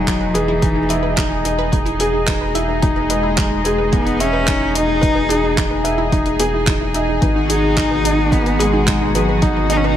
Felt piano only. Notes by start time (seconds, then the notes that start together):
Already playing: D#4 G#4 D#5 E5
0.06 D#4
0.34 G#4
0.62 D#4
0.90 E5
1.17 D#4
1.45 D#5
1.73 D#4
2.00 G#4
2.27 D#4
2.55 E5
2.82 D#4
3.10 D#5
3.38 D#4
3.66 G#4
3.93 D#4
4.20 E5
4.47 D#4
4.75 D#5
5.01 D#4
5.29 G#4
5.57 D#4
5.84 E5
6.12 D#4
6.39 G#4
6.67 D#4
6.94 D#4
7.21 D#4
7.49 G#4
7.77 D#4
8.04 D#5
8.31 D#4
8.59 G#4
8.87 D#4
9.15 G#4
9.42 D#4
9.70 D#5